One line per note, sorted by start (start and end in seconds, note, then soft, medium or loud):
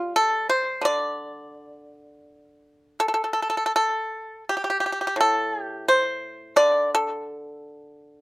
0.00 1.53 G3 medium
0.00 0.13 F4 medium
0.16 0.48 A4 medium
0.49 0.82 C5 medium
0.81 2.98 D3 medium
0.81 3.33 D5 medium
3.00 3.07 A4 medium
3.08 3.13 A4 medium
3.14 3.22 A4 medium
3.24 3.31 A4 soft
3.33 3.39 A4 medium
3.42 3.48 A4 soft
3.50 3.55 A4 medium
3.57 3.63 A4 soft
3.66 3.71 A4 medium
3.76 4.44 A4 medium
4.49 4.55 G4 medium
4.57 4.63 G4 soft
4.64 4.69 G4 medium
4.70 4.77 G4 soft
4.80 4.85 G4 medium
4.86 4.91 G4 soft
4.92 4.99 G4 soft
5.01 5.06 G4 soft
5.07 5.14 G4 medium
5.16 6.56 A2 medium
5.21 5.62 A4 medium
5.62 5.85 G4 medium
5.88 6.54 C5 medium
6.56 8.21 D3 medium
6.56 6.89 D5 loud
6.95 8.21 A4 loud